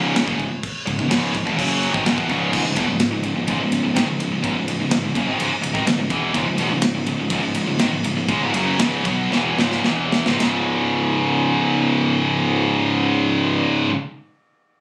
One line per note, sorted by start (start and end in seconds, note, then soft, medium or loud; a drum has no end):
0.00 0.25 C#1 medium
0.00 0.27 C#2 medium
0.00 0.27 G#2 loud
0.00 0.28 C#3 medium
0.16 snare loud
0.16 crash medium
0.28 0.38 F#1 medium
0.28 0.39 F#2 medium
0.28 0.39 C#3 loud
0.28 kick loud
0.39 0.50 C#1 medium
0.39 0.52 C#2 medium
0.39 0.52 G#2 medium
0.39 kick medium
0.39 crash medium
0.63 kick loud
0.63 crash medium
0.87 0.98 C#1 medium
0.87 0.99 C#2 medium
0.87 0.99 G#2 medium
0.87 kick medium
0.87 crash medium
0.99 1.09 C#1 medium
0.99 1.11 C#2 medium
0.99 1.11 G#2 medium
0.99 kick medium
1.10 1.32 C#1 medium
1.10 1.35 C#2 medium
1.10 1.35 G#2 loud
1.10 1.35 C#3 loud
1.10 snare loud
1.10 crash medium
1.35 1.46 C#1 medium
1.35 1.47 C#2 medium
1.35 1.48 G#2 medium
1.35 kick medium
1.35 crash medium
1.47 1.58 E1 loud
1.47 1.58 E2 loud
1.47 1.59 B2 medium
1.47 kick medium
1.59 1.92 F#1 loud
1.59 1.94 F#2 medium
1.59 1.94 C#3 loud
1.59 1.95 F#3 loud
1.59 kick medium
1.59 crash medium
1.83 crash medium
1.94 2.05 G#1 medium
1.94 2.05 G#2 medium
1.94 2.06 D#3 medium
1.94 kick loud
2.06 2.17 C#1 loud
2.06 2.18 C#2 loud
2.06 2.18 G#2 medium
2.06 snare loud
2.06 crash medium
2.18 2.29 E1 medium
2.18 2.29 E2 loud
2.18 2.30 B2 medium
2.18 kick loud
2.29 2.52 C#1 loud
2.29 2.53 C#2 medium
2.29 2.54 G#2 medium
2.29 2.54 C#3 loud
2.29 kick medium
2.29 crash medium
2.53 2.65 C#1 medium
2.53 2.66 C#2 medium
2.53 2.66 G#2 loud
2.53 kick loud
2.53 crash loud
2.66 2.76 C#1 medium
2.66 2.78 C#2 medium
2.66 2.78 G#2 medium
2.76 2.88 E1 loud
2.76 2.89 E2 medium
2.76 2.89 B2 loud
2.76 kick loud
2.76 ride medium
2.89 3.12 C#1 medium
2.89 3.09 C#2 medium
2.89 3.09 G#2 medium
3.00 snare loud
3.00 ride loud
3.13 3.24 C#1 medium
3.13 3.25 C#2 medium
3.13 3.24 G#2 medium
3.23 3.35 C#1 medium
3.23 3.37 C#2 medium
3.23 3.37 G#2 medium
3.23 ride medium
3.36 3.47 C#1 medium
3.36 3.49 C#2 medium
3.36 3.49 G#2 medium
3.48 3.60 C#1 loud
3.48 3.61 C#2 loud
3.48 3.60 G#2 loud
3.48 kick loud
3.48 ride loud
3.60 3.71 C#1 medium
3.60 3.71 C#2 medium
3.60 3.72 G#2 medium
3.71 3.83 C#1 medium
3.71 3.83 C#2 medium
3.71 3.83 G#2 medium
3.71 ride medium
3.83 3.95 C#1 medium
3.83 3.96 C#2 medium
3.83 3.95 G#2 medium
3.95 4.06 G#1 loud
3.95 4.08 G#2 loud
3.95 4.08 D#3 loud
3.95 snare loud
3.95 ride loud
4.07 4.19 C#1 medium
4.07 4.19 C#2 medium
4.07 4.19 G#2 medium
4.19 4.31 C#1 medium
4.19 4.32 C#2 medium
4.19 4.32 G#2 medium
4.19 ride medium
4.32 4.43 C#1 medium
4.32 4.43 C#2 medium
4.32 4.44 G#2 medium
4.44 4.55 C#1 medium
4.44 4.55 C#2 medium
4.44 4.56 G#2 loud
4.44 kick loud
4.44 ride loud
4.55 4.67 C#1 medium
4.55 4.68 C#2 medium
4.55 4.68 G#2 medium
4.68 4.79 C#1 medium
4.68 4.80 C#2 medium
4.68 4.80 G#2 medium
4.68 ride medium
4.80 4.91 C#1 medium
4.80 4.91 C#2 medium
4.80 4.92 G#2 medium
4.91 5.04 C#1 medium
4.91 5.03 C#2 medium
4.91 5.04 G#2 medium
4.91 snare loud
4.91 ride loud
5.04 5.15 C#1 medium
5.04 5.15 C#2 medium
5.04 5.16 G#2 medium
5.15 5.26 F#1 loud
5.15 5.27 F#2 medium
5.15 5.27 C#3 medium
5.15 kick loud
5.15 ride medium
5.27 5.38 G#1 loud
5.27 5.39 G#2 medium
5.27 5.39 D#3 loud
5.39 5.50 C#1 loud
5.39 5.49 C#2 medium
5.39 5.51 G#2 loud
5.39 ride loud
5.51 muted distorted electric guitar stroke medium
5.51 muted picked electric bass stroke soft
5.63 5.74 C#1 medium
5.63 5.74 C#2 medium
5.63 5.73 G#2 medium
5.63 ride medium
5.74 5.86 G#1 medium
5.74 5.86 G#2 loud
5.74 5.86 D#3 loud
5.74 kick loud
5.87 5.98 C#1 medium
5.87 5.97 C#2 medium
5.87 5.98 G#2 medium
5.87 snare loud
5.87 ride loud
5.98 6.09 C#1 medium
5.98 6.09 C#2 medium
5.98 6.10 G#2 medium
6.10 6.32 E1 loud
6.10 6.33 E2 medium
6.10 6.34 B2 loud
6.10 6.34 E3 loud
6.10 kick loud
6.10 ride medium
6.34 6.46 C#1 medium
6.34 6.44 C#2 loud
6.34 6.45 G#2 loud
6.34 kick loud
6.34 ride loud
6.45 6.58 C#1 medium
6.45 6.56 C#2 medium
6.45 6.58 G#2 medium
6.57 6.70 E1 medium
6.57 6.69 E2 loud
6.57 6.69 B2 loud
6.57 ride medium
6.71 6.93 C#1 medium
6.71 6.90 C#2 medium
6.71 6.90 G#2 medium
6.82 snare loud
6.82 ride loud
6.94 7.06 C#1 medium
6.94 7.05 C#2 medium
6.94 7.05 G#2 medium
7.06 7.17 C#1 medium
7.06 7.17 C#2 medium
7.06 7.17 G#2 medium
7.06 ride medium
7.18 7.29 C#1 medium
7.18 7.29 C#2 medium
7.18 7.29 G#2 medium
7.30 7.42 C#1 loud
7.30 7.41 C#2 medium
7.30 7.41 G#2 loud
7.30 kick loud
7.30 ride loud
7.42 7.54 C#1 medium
7.42 7.53 C#2 medium
7.42 7.54 G#2 medium
7.55 7.66 C#1 medium
7.55 7.65 C#2 medium
7.55 7.65 G#2 medium
7.55 ride medium
7.66 7.78 C#1 medium
7.66 7.78 C#2 medium
7.66 7.77 G#2 medium
7.78 7.90 G#1 loud
7.78 7.90 G#2 medium
7.78 7.91 D#3 loud
7.78 snare loud
7.78 ride loud
7.90 8.02 C#1 medium
7.90 8.02 C#2 medium
7.90 8.03 G#2 medium
8.03 8.15 C#1 medium
8.03 8.14 C#2 medium
8.03 8.15 G#2 medium
8.03 ride medium
8.15 8.27 C#1 medium
8.15 8.28 C#2 medium
8.15 8.28 G#2 medium
8.28 8.40 C#2 loud
8.28 8.40 C#3 medium
8.28 8.41 G#3 loud
8.28 kick loud
8.28 ride medium
8.41 8.53 C#1 medium
8.41 8.53 C#2 medium
8.41 8.53 G#2 loud
8.54 8.77 F#1 loud
8.54 8.79 F#2 medium
8.54 8.79 C#3 loud
8.54 8.80 F#3 loud
8.54 ride medium
8.78 9.03 C#1 loud
8.78 9.04 C#2 loud
8.78 9.05 G#2 loud
8.78 9.05 C#3 loud
8.78 snare loud
8.78 ride loud
9.05 9.29 B1 medium
9.05 9.30 B2 medium
9.05 9.31 F#3 loud
9.05 9.31 B3 medium
9.05 kick loud
9.05 ride medium
9.29 9.55 E1 loud
9.29 9.56 E2 medium
9.29 9.57 B2 loud
9.29 9.57 E3 loud
9.29 snare medium
9.56 9.82 C#1 loud
9.56 9.83 C#2 medium
9.56 9.84 G#2 loud
9.56 9.84 C#3 loud
9.56 snare medium
9.71 snare medium
9.83 10.23 E1 medium
9.83 10.25 E2 medium
9.83 10.25 B2 medium
9.83 10.25 E3 loud
9.83 snare medium
10.12 snare loud
10.26 10.39 C#1 loud
10.26 10.36 C#2 medium
10.26 10.39 G#2 loud
10.26 snare loud
10.37 13.64 C#1 loud
10.37 13.87 C#2 medium
10.37 13.90 G#2 loud
10.37 13.91 C#3 loud
10.37 snare loud
10.37 ride bell medium